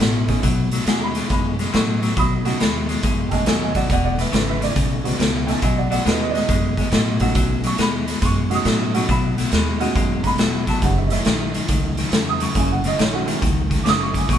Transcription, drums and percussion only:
0.00 snare loud
0.00 closed hi-hat medium
0.28 kick medium
0.28 snare soft
0.28 closed hi-hat medium
0.43 kick loud
0.43 snare soft
0.43 closed hi-hat medium
0.71 snare soft
0.71 closed hi-hat medium
0.87 snare loud
0.87 closed hi-hat medium
1.15 snare soft
1.15 closed hi-hat medium
1.30 kick loud
1.30 snare soft
1.30 closed hi-hat medium
1.59 snare soft
1.59 closed hi-hat medium
1.74 snare loud
1.74 closed hi-hat medium
2.03 snare soft
2.03 closed hi-hat medium
2.17 kick loud
2.17 snare soft
2.17 closed hi-hat medium
2.45 snare soft
2.45 closed hi-hat medium
2.60 snare loud
2.60 closed hi-hat medium
2.89 snare soft
2.89 closed hi-hat medium
3.03 kick loud
3.03 snare soft
3.03 closed hi-hat medium
3.31 kick medium
3.31 snare soft
3.31 closed hi-hat medium
3.46 snare loud
3.46 closed hi-hat medium
3.75 kick medium
3.75 snare soft
3.75 closed hi-hat medium
3.90 kick loud
3.90 snare soft
3.90 closed hi-hat medium
4.19 snare soft
4.19 closed hi-hat medium
4.33 snare loud
4.33 closed hi-hat medium
4.62 snare soft
4.62 closed hi-hat medium
4.76 kick loud
4.76 snare soft
4.76 closed hi-hat medium
5.05 snare soft
5.05 closed hi-hat medium
5.20 snare medium
5.20 closed hi-hat medium
5.48 snare soft
5.48 closed hi-hat medium
5.62 kick loud
5.62 snare soft
5.62 closed hi-hat medium
5.92 snare soft
5.92 closed hi-hat medium
6.06 snare loud
6.06 closed hi-hat medium
6.35 snare soft
6.35 closed hi-hat medium
6.49 kick loud
6.49 snare soft
6.49 closed hi-hat medium
6.77 kick medium
6.77 snare soft
6.77 closed hi-hat medium
6.92 snare loud
6.92 closed hi-hat medium
7.20 kick medium
7.20 snare soft
7.20 closed hi-hat medium
7.35 kick loud
7.35 snare soft
7.35 closed hi-hat medium
7.64 snare soft
7.64 closed hi-hat medium
7.78 snare loud
7.78 closed hi-hat medium
8.08 snare soft
8.08 closed hi-hat medium
8.22 kick loud
8.22 snare soft
8.22 closed hi-hat loud
8.51 snare soft
8.51 closed hi-hat medium
8.65 snare loud
8.65 closed hi-hat medium
8.95 snare soft
8.95 closed hi-hat medium
9.09 kick loud
9.09 snare soft
9.09 closed hi-hat medium
9.38 snare soft
9.38 closed hi-hat medium
9.52 snare loud
9.52 closed hi-hat medium
9.81 snare soft
9.81 closed hi-hat medium
9.96 kick loud
9.96 snare soft
9.96 closed hi-hat medium
10.24 kick medium
10.24 snare soft
10.24 closed hi-hat medium
10.38 snare loud
10.38 closed hi-hat medium
10.67 kick medium
10.67 snare soft
10.67 closed hi-hat medium
10.82 kick loud
10.82 snare soft
10.82 closed hi-hat medium
11.10 snare soft
11.10 closed hi-hat medium
11.25 snare loud
11.25 closed hi-hat medium
11.54 snare soft
11.54 closed hi-hat medium
11.68 kick loud
11.68 snare soft
11.68 closed hi-hat medium
11.97 snare soft
11.97 closed hi-hat medium
12.12 snare loud
12.12 closed hi-hat medium
12.40 snare soft
12.40 closed hi-hat medium
12.55 kick loud
12.55 snare soft
12.55 closed hi-hat medium
12.84 snare soft
12.84 closed hi-hat medium
12.99 snare loud
12.99 closed hi-hat medium
13.28 snare soft
13.28 closed hi-hat medium
13.42 kick loud
13.42 snare soft
13.42 closed hi-hat medium
13.71 kick medium
13.71 snare soft
13.71 closed hi-hat medium
13.86 snare loud
13.86 closed hi-hat medium
14.14 kick medium
14.14 snare soft
14.14 closed hi-hat medium
14.29 kick loud
14.29 snare soft
14.29 closed hi-hat medium

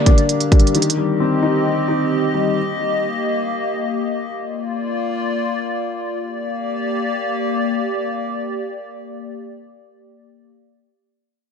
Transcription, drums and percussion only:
0.06 kick medium
0.06 closed hi-hat medium
0.18 closed hi-hat medium
0.29 closed hi-hat medium
0.40 closed hi-hat medium
0.52 kick loud
0.52 closed hi-hat soft
0.60 closed hi-hat medium
0.67 closed hi-hat medium
0.75 closed hi-hat medium
0.82 closed hi-hat medium
0.90 closed hi-hat medium

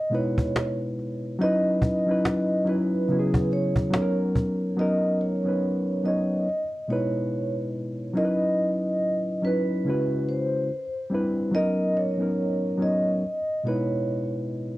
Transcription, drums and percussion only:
0.13 cajon slap soft
0.38 cajon bass loud
0.56 cajon slap loud
0.56 cajon slap medium
0.99 cajon slap soft
1.40 cajon slap soft
1.82 cajon bass medium
2.25 cajon slap loud
2.25 cajon slap medium
2.66 cajon slap soft
3.08 cajon slap soft
3.34 cajon bass medium
3.50 cajon slap soft
3.76 cajon bass medium
3.94 cajon slap loud
3.94 cajon slap medium
4.36 cajon bass medium

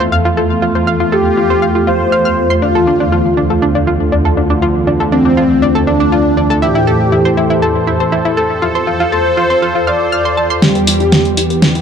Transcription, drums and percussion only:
10.62 snare soft
10.62 closed hi-hat soft
10.75 closed hi-hat soft
10.87 open hi-hat loud
11.00 closed hi-hat soft
11.12 snare soft
11.12 closed hi-hat soft
11.25 closed hi-hat soft
11.37 open hi-hat loud
11.50 closed hi-hat soft
11.62 snare soft
11.62 closed hi-hat soft
11.75 closed hi-hat soft

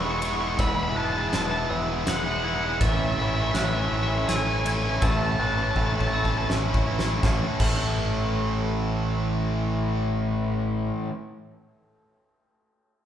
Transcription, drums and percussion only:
0.22 ride medium
0.59 kick loud
0.59 ride medium
1.33 snare loud
1.33 ride medium
2.07 snare loud
2.07 ride medium
2.81 kick loud
2.81 ride medium
3.55 snare loud
3.55 ride medium
4.29 snare medium
4.29 ride loud
4.66 ride medium
5.02 kick loud
5.02 ride medium
5.76 kick medium
6.01 kick medium
6.25 kick medium
6.50 snare loud
6.74 kick loud
6.99 snare medium
7.23 kick loud
7.23 snare loud
7.60 kick loud
7.60 crash loud

